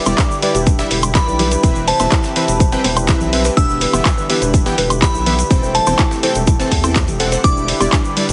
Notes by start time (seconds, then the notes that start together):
Already playing: D3 G3 E4 G4 B4 D6
0.06 E1 G3 E4 B4 D5, closed hi-hat, high conga, high woodblock, shaker
0.18 D4, kick, snare, clap, closed hi-hat, shaker
0.31 shaker
0.42 G3 E4 B4 D5, open hi-hat, shaker
0.55 E1 G4, closed hi-hat, shaker
0.66 D4, kick, closed hi-hat, shaker
0.79 G3 E4 E5, snare, closed hi-hat, shaker
0.91 E1 B4, open hi-hat, shaker
1.03 closed hi-hat, high woodblock, shaker
1.15 G3 E4 B4 D5 B5, kick, snare, clap, closed hi-hat, shaker
1.27 B1 B4, shaker
1.39 G3 E4 B4 D5, open hi-hat, low conga, shaker
1.51 B4, closed hi-hat, shaker
1.63 E1 C3 E3 C4 E4 B4 E5, kick, closed hi-hat, shaker
1.75 shaker
1.88 C5 A5, open hi-hat, shaker
2.00 E1 E3 C4 B4 E5, snare, closed hi-hat, high conga, high woodblock, shaker
2.11 E4, kick, snare, clap, closed hi-hat, shaker
2.23 snare, shaker
2.36 E3 C4 B4 C5 E5, open hi-hat, shaker
2.48 E1, closed hi-hat, shaker
2.60 C5, kick, closed hi-hat, shaker
2.72 E3 C4 B4 C5 G5, snare, closed hi-hat, shaker
2.84 E1 C5, open hi-hat, high conga, shaker
2.97 C5, closed hi-hat, high woodblock, shaker
3.08 E3 C4 E4 B4 E5, kick, snare, clap, closed hi-hat, shaker
3.20 B1, low conga, shaker
3.33 C4 B4 C5 E5, open hi-hat, shaker
3.45 B4, snare, closed hi-hat, shaker
3.57 E1 D3 E3 B3 D4 G4 E5 E6, kick, closed hi-hat, shaker
3.69 shaker
3.81 B4, open hi-hat, shaker
3.93 E1 E3 B3 G4 E5, closed hi-hat, high conga, high woodblock, shaker
4.05 B4, kick, snare, clap, closed hi-hat, shaker
4.18 B4, shaker
4.30 E3 B3 G4 B4 E5, open hi-hat, shaker
4.42 E1 B4, closed hi-hat, shaker
4.54 D4, kick, closed hi-hat, shaker
4.66 E3 B3 G4 G5, snare, closed hi-hat, shaker
4.78 E1 B4, open hi-hat, shaker
4.90 G4, closed hi-hat, high woodblock, shaker
5.02 E3 B3 D4 G4 E5 B5, kick, snare, clap, closed hi-hat, shaker
5.14 B1, shaker
5.26 B3 G4 B4 E5, open hi-hat, low conga, shaker
5.39 closed hi-hat, shaker
5.51 E1 C3 E3 A3 C4 G4 A4 C5 G5, kick, closed hi-hat, shaker
5.63 C5, shaker
5.75 C5 A5, open hi-hat, shaker
5.87 E1 E3 C4 A4 C5 G5, snare, closed hi-hat, high conga, high woodblock, shaker
5.98 E4, kick, snare, clap, closed hi-hat, shaker
6.11 snare, shaker
6.23 E3 C4 A4 C5 G5, open hi-hat, shaker
6.35 E1 A4, closed hi-hat, shaker
6.47 E4, kick, closed hi-hat, shaker
6.60 E3 C4 A4 A5, snare, closed hi-hat, shaker
6.72 E2 A5, kick, open hi-hat, high conga, shaker
6.84 E3 C4 E4 A4 G5, closed hi-hat, high woodblock, shaker
6.96 kick, snare, clap, closed hi-hat, shaker
7.08 E1 G4, closed hi-hat, low conga, shaker
7.20 C4 A4 F#5, open hi-hat, shaker
7.32 C5, snare, closed hi-hat, shaker
7.44 E1 D3 G3 D4 E4 B4 D5 D6, kick, closed hi-hat, shaker
7.57 shaker
7.68 E5, open hi-hat, shaker
7.80 E1 G3 E4 G4 D5, closed hi-hat, high conga, high woodblock, shaker
7.92 D4, kick, snare, clap, closed hi-hat, shaker
8.05 shaker
8.17 G3 E4 B4 D5, open hi-hat, shaker
8.29 E1, closed hi-hat, shaker